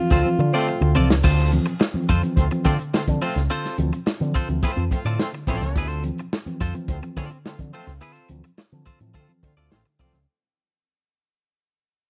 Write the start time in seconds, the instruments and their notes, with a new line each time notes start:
Already playing: tine electric piano E3 F3 C4, alto saxophone F4
0.11 picked electric bass D2, horn section A3 C4 F4 C5, clean electric guitar C4 F4 A4 C5, kick
0.25 tine electric piano E3 F3 C4
0.39 picked electric bass D3, muted clean electric guitar stroke
0.54 tine electric piano D3, horn section A3 C4 F4 C5, clean electric guitar C4 F4 A4 D5
0.68 tine electric piano F3 C4, muted clean electric guitar stroke
0.81 picked electric bass D2, tine electric piano D3, muted clean electric guitar stroke
0.95 picked electric bass C2, tine electric piano E3 F3 C4, clean electric guitar C4 F4 A4 D5
1.10 picked electric bass C#2, muted clean electric guitar stroke, snare
1.24 picked electric bass D2, tine electric piano D3, clean electric guitar C4 F4 A4 C5, kick, crash
1.39 snare, closed hi-hat
1.52 tine electric piano E3 F3 C4, closed hi-hat
1.66 tine electric piano F3 C4, muted clean electric guitar stroke, closed hi-hat
1.80 muted clean electric guitar stroke, snare
1.94 tine electric piano E3 F3 C4, muted picked electric bass stroke, closed hi-hat
2.09 picked electric bass F2, tine electric piano D3, clean electric guitar C4 F4 A4 C5, kick, closed hi-hat
2.23 tine electric piano E3 F3 C4, closed hi-hat
2.37 picked electric bass D2, horn section A3 C4 F4 C5, kick, closed hi-hat
2.51 tine electric piano E3 F3 C4, muted clean electric guitar stroke, closed hi-hat
2.65 picked electric bass D3, horn section A3 C4 F4 C5, clean electric guitar C4 F4 A4 D5, kick, closed hi-hat
2.79 tine electric piano D3, muted clean electric guitar stroke, closed hi-hat
2.93 tine electric piano D3, horn section A3 C4 F4 C5, muted clean electric guitar stroke, snare
3.07 picked electric bass D3, tine electric piano E3 F3 C4, kick, closed hi-hat
3.21 tine electric piano F3 C4, horn section A3 C4 F4 C5, clean electric guitar C4 F4 A4 C5, open hi-hat
3.36 picked electric bass C#2, muted clean electric guitar stroke, snare, closed hi-hat
3.50 tine electric piano D3, clean electric guitar C4 F4 A4 C5, closed hi-hat
3.65 snare, closed hi-hat
3.78 picked electric bass D2, tine electric piano E3 F3 C4, closed hi-hat
3.92 tine electric piano F3 C4, muted clean electric guitar stroke, closed hi-hat
4.06 muted clean electric guitar stroke, muted picked electric bass stroke, snare
4.20 picked electric bass D3, tine electric piano E3 F3 C4, closed hi-hat
4.35 tine electric piano D3, clean electric guitar C4 F4 A4 C5, kick, closed hi-hat
4.48 picked electric bass D2, tine electric piano E3 F3 C4, closed hi-hat
4.63 horn section A3 C4 F4 C5, clean electric guitar C4 F4 A4 C5, muted picked electric bass stroke, kick, closed hi-hat
4.76 picked electric bass F2, tine electric piano E3 F3 C4, closed hi-hat
4.91 horn section A3 C4 F4 C5, muted clean electric guitar stroke, kick, closed hi-hat
5.05 picked electric bass A2, tine electric piano D3, clean electric guitar C4 F4 A4 D5, closed hi-hat
5.19 tine electric piano F3 C4, horn section A3 C4 F4 C5, muted clean electric guitar stroke, snare
5.33 tine electric piano D3, muted clean electric guitar stroke, closed hi-hat
5.47 picked electric bass A1, tine electric piano E3 F3 C4, horn section A3 C4 F4 C5, clean electric guitar C4 F4 A4 D5, kick, open hi-hat
5.61 picked electric bass C#2, muted clean electric guitar stroke, snare, closed hi-hat
5.75 picked electric bass D2, tine electric piano D3, clean electric guitar B3 E4 A4 C5, kick, closed hi-hat
5.88 clean electric guitar C4 F4, closed hi-hat
6.04 tine electric piano E3 F3 C4, closed hi-hat
6.18 tine electric piano F3 C4, muted clean electric guitar stroke, closed hi-hat
6.33 muted clean electric guitar stroke, snare
6.46 tine electric piano E3 F3 C4, muted picked electric bass stroke, closed hi-hat
6.60 picked electric bass F2, tine electric piano D3, clean electric guitar C4 F4 A4 C5, kick, closed hi-hat
6.74 tine electric piano E3 F3 C4, muted clean electric guitar stroke, closed hi-hat
6.88 picked electric bass D2, horn section A3 C4 F4 C5, kick, closed hi-hat
7.02 tine electric piano E3 F3 C4, muted clean electric guitar stroke, closed hi-hat
7.17 picked electric bass D3, horn section A3 C4 F4 C5, clean electric guitar C4 F4 A4 D5, kick, closed hi-hat
7.31 tine electric piano D3, muted clean electric guitar stroke, closed hi-hat
7.45 tine electric piano D3, horn section A3 C4 F4 C5, muted clean electric guitar stroke, snare
7.59 picked electric bass D3, tine electric piano E3 F3 C4, kick, closed hi-hat
7.73 tine electric piano F3 C4, horn section A3 C4 F4 C5, clean electric guitar C4 F4 A4 C5, open hi-hat
7.87 picked electric bass C#2, muted clean electric guitar stroke, snare, closed hi-hat
8.01 tine electric piano D3, clean electric guitar B3 E4 G#4 B4, closed hi-hat
8.12 clean electric guitar C4 F4 A4 C5, closed hi-hat
8.28 picked electric bass D2, tine electric piano E3 F3 C4, closed hi-hat
8.43 tine electric piano F3 C4, muted clean electric guitar stroke, closed hi-hat
8.58 muted clean electric guitar stroke, muted picked electric bass stroke, snare
8.72 picked electric bass D3, tine electric piano E3 F3 C4, closed hi-hat
8.86 tine electric piano D3, clean electric guitar C4 F4 A4 C5, kick, closed hi-hat
9.00 picked electric bass A2, tine electric piano E3 F3 C4, muted clean electric guitar stroke, closed hi-hat
9.14 picked electric bass D3, horn section A3 C4 F4 C5, clean electric guitar C4 F4 A4 C5, kick, closed hi-hat
9.29 tine electric piano E3 F3 C4, closed hi-hat
9.43 picked electric bass D3, horn section A3 C4 F4 C5, muted clean electric guitar stroke, kick, closed hi-hat
9.57 picked electric bass D2, tine electric piano D3, clean electric guitar C4 F4 A4 D5, closed hi-hat
9.71 picked electric bass A1, tine electric piano F3 C4, horn section A3 C4 F4 C5, snare
9.85 tine electric piano D3, muted clean electric guitar stroke, closed hi-hat
9.99 picked electric bass C2, tine electric piano E3 F3 C4, horn section A3 C4 F4 C5, clean electric guitar C4 F4 A4 D5, kick, open hi-hat
10.14 picked electric bass C#2, muted clean electric guitar stroke, snare, closed hi-hat